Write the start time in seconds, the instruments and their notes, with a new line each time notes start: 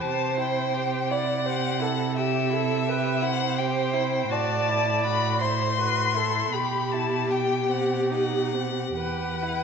0.01 cello C3, violin G4 A5, viola C5
0.37 violin E4 G5
0.74 violin G4
1.10 violin E4 F#5, viola D5
1.44 violin G4, viola C5
1.79 violin E4, viola A4
2.16 violin G4 E5, viola G4
2.50 violin E4, viola A4
2.86 violin G4, viola B4
3.21 violin E4 F#5, viola C5
3.58 violin G4 G5
3.94 violin E4
4.30 cello A2, violin F#4 A5, viola D5
4.68 violin E4
5.04 violin F#4 B5
5.41 violin E4 C6, viola C5
5.77 violin F#4, viola B4
6.14 violin E4, viola A4
6.53 cello B2, violin G4 B5, viola G4
6.92 violin E4 A5
7.30 violin G4 G5
7.70 violin C4 F#5
8.11 violin D#4 F#5
8.54 violin C4
8.97 cello E2, violin G4 F#5, viola B4
9.43 violin E4